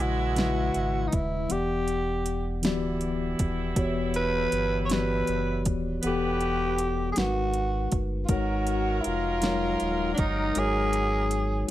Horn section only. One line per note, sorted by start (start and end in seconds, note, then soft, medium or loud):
0.00 1.08 G#3 medium
0.00 1.08 B3 medium
0.00 1.08 E4 medium
2.63 5.61 G3 medium
2.63 5.61 B3 medium
2.63 5.61 E4 medium
6.03 6.77 B3 medium
6.03 6.76 G4 medium
6.03 6.76 B4 medium
8.29 11.27 F#3 medium
8.29 11.27 D#4 medium
8.29 11.27 A#4 medium